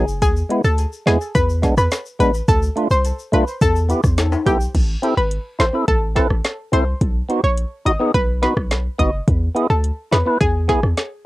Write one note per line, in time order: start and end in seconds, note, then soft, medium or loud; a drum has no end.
0.00 0.23 F#1 medium
0.08 shaker medium
0.22 0.43 E2 loud
0.22 0.32 G#4 medium
0.22 kick loud
0.22 closed hi-hat medium
0.22 shaker medium
0.36 shaker medium
0.49 0.61 G#3 medium
0.49 0.62 B3 medium
0.49 0.62 E4 medium
0.49 closed hi-hat medium
0.64 0.86 D2 medium
0.64 0.75 A4 medium
0.64 shaker medium
0.78 closed hi-hat medium
0.78 shaker medium
0.93 shaker medium
1.06 1.17 E2 medium
1.06 1.18 G#3 medium
1.06 1.18 B3 medium
1.06 1.19 E4 medium
1.06 1.18 G#4 medium
1.06 snare loud
1.06 closed hi-hat medium
1.21 shaker medium
1.35 1.67 E2 loud
1.35 1.45 B4 medium
1.35 kick medium
1.35 closed hi-hat medium
1.35 shaker medium
1.49 shaker medium
1.62 1.74 G#3 medium
1.62 1.75 B3 medium
1.62 1.75 D4 medium
1.62 kick medium
1.62 snare medium
1.62 closed hi-hat soft
1.62 shaker medium
1.77 1.88 E2 loud
1.77 1.88 B4 medium
1.77 cross-stick medium
1.77 shaker medium
1.91 snare loud
1.91 closed hi-hat medium
1.91 shaker medium
2.06 shaker soft
2.19 2.41 A1 loud
2.19 2.31 G#3 medium
2.19 2.31 B3 medium
2.19 2.32 D4 medium
2.19 2.31 B4 medium
2.19 closed hi-hat medium
2.19 shaker medium
2.34 shaker medium
2.48 2.70 D2 loud
2.48 2.59 A4 loud
2.48 kick loud
2.48 closed hi-hat medium
2.48 shaker medium
2.62 shaker medium
2.76 2.87 A3 medium
2.76 2.88 D4 medium
2.76 2.88 F4 medium
2.76 closed hi-hat medium
2.90 3.12 C2 medium
2.90 3.01 C5 medium
2.90 shaker medium
3.05 closed hi-hat medium
3.05 shaker medium
3.19 shaker medium
3.32 3.44 B1 medium
3.32 3.44 A3 medium
3.32 3.44 D4 medium
3.32 3.45 F4 medium
3.32 3.44 B4 medium
3.32 closed hi-hat medium
3.48 shaker medium
3.61 3.93 E2 loud
3.61 4.02 A4 loud
3.61 kick medium
3.61 closed hi-hat medium
3.61 shaker medium
3.76 shaker medium
3.89 4.01 B3 medium
3.89 4.01 E4 medium
3.89 4.02 G4 medium
3.89 closed hi-hat medium
3.89 shaker medium
4.03 4.36 E2 medium
4.03 kick medium
4.03 cross-stick medium
4.03 shaker medium
4.18 snare loud
4.18 closed hi-hat medium
4.18 high timbale medium
4.18 shaker medium
4.32 high timbale medium
4.32 shaker soft
4.46 4.68 B1 medium
4.46 4.57 B3 medium
4.46 4.58 E4 medium
4.46 4.57 G4 medium
4.46 4.58 A4 medium
4.46 kick medium
4.46 closed hi-hat medium
4.46 shaker medium
4.61 shaker medium
4.75 4.96 A1 loud
4.75 kick loud
4.75 closed hi-hat medium
4.75 crash medium
5.02 5.14 C4 medium
5.02 5.14 E4 medium
5.02 5.15 A4 medium
5.02 closed hi-hat medium
5.17 5.38 G#1 medium
5.17 5.28 B4 medium
5.31 closed hi-hat medium
5.59 5.70 A1 medium
5.59 5.65 E4 medium
5.59 5.66 A4 medium
5.59 5.70 C5 medium
5.59 snare loud
5.59 closed hi-hat medium
5.73 5.85 C4 medium
5.73 5.85 E4 medium
5.73 5.86 A4 medium
5.88 6.20 A1 medium
5.88 5.98 A4 medium
5.88 kick medium
5.88 closed hi-hat medium
6.15 6.27 C4 medium
6.15 6.28 E4 medium
6.15 6.27 A4 medium
6.15 6.28 B4 medium
6.15 kick medium
6.15 snare medium
6.15 closed hi-hat soft
6.30 6.41 A1 loud
6.30 cross-stick medium
6.44 snare loud
6.44 closed hi-hat medium
6.72 6.94 C2 loud
6.72 6.84 C4 medium
6.72 6.84 E4 medium
6.72 6.85 A4 medium
6.72 6.84 C5 medium
6.72 closed hi-hat medium
7.01 7.22 B1 loud
7.01 kick loud
7.01 closed hi-hat medium
7.29 7.40 B3 medium
7.29 7.41 D#4 medium
7.29 7.41 F#4 medium
7.29 closed hi-hat medium
7.44 7.65 A#1 loud
7.44 7.54 C#5 medium
7.58 closed hi-hat medium
7.85 7.97 G#1 medium
7.85 7.91 D#4 medium
7.85 7.92 F#4 medium
7.85 7.97 D#5 medium
7.85 closed hi-hat medium
7.99 8.11 B3 medium
7.99 8.12 D#4 medium
7.99 8.12 G#4 medium
8.14 8.46 B1 loud
8.14 8.25 B4 medium
8.14 kick medium
8.14 closed hi-hat medium
8.42 8.54 B3 medium
8.42 8.54 D#4 medium
8.42 8.55 F#4 medium
8.42 8.53 B4 medium
8.42 snare medium
8.42 closed hi-hat soft
8.57 8.89 B1 medium
8.57 kick medium
8.57 cross-stick medium
8.71 snare loud
8.71 closed hi-hat medium
8.98 9.21 F#1 medium
8.98 9.10 B3 medium
8.98 9.11 D#4 medium
8.98 9.11 F#4 medium
8.98 9.10 D#5 medium
8.98 kick medium
8.98 closed hi-hat medium
9.28 9.49 E2 loud
9.28 kick loud
9.28 closed hi-hat medium
9.55 9.67 B3 medium
9.55 9.67 E4 medium
9.55 9.67 G#4 medium
9.55 closed hi-hat medium
9.70 9.91 D2 loud
9.70 9.80 A4 medium
9.84 closed hi-hat medium
10.11 10.23 E2 medium
10.11 10.18 E4 medium
10.11 10.19 G#4 medium
10.11 10.23 B4 medium
10.11 snare loud
10.11 closed hi-hat medium
10.25 10.37 B3 medium
10.25 10.38 E4 medium
10.25 10.38 B4 medium
10.41 10.73 E2 loud
10.41 10.51 G#4 medium
10.41 kick medium
10.41 closed hi-hat medium
10.68 10.80 B3 medium
10.68 10.80 E4 medium
10.68 10.79 G#4 medium
10.68 10.81 G#4 medium
10.68 kick medium
10.68 snare medium
10.68 closed hi-hat soft
10.83 10.94 E2 loud
10.83 cross-stick medium
10.97 snare loud
10.97 closed hi-hat medium